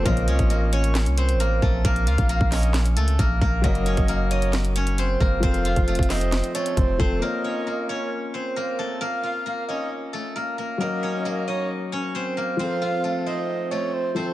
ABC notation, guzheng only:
X:1
M:4/4
L:1/8
Q:1/4=134
K:Bbm
V:1 name="Guzheng"
[B,B] [Dd] [B,B] [Dd]2 [Cc] [B,B] [=A,=A] | [B,B] [Ff] [B,B] [Dd]2 [=A,=A] [B,B] [B,B] | [B,B] [Dd] [B,B] [Ee]2 [Dd] [Cc] [B,B] | [Cc] [Ff] [=A,=A] [Cc]2 [A,A]2 [Cc] |
[B,B] [Dd] [B,B] [Dd]2 [Cc] [B,B] [=A,=A] | [B,B] [Ff] [B,B] [Dd]2 [=A,=A] [B,B] [B,B] | [B,B] [Dd] [B,B] [Ee]2 [Dd] [Cc] [B,B] | [Cc] [Ff] [=A,=A] [Cc]2 [A,A]2 [Cc] |]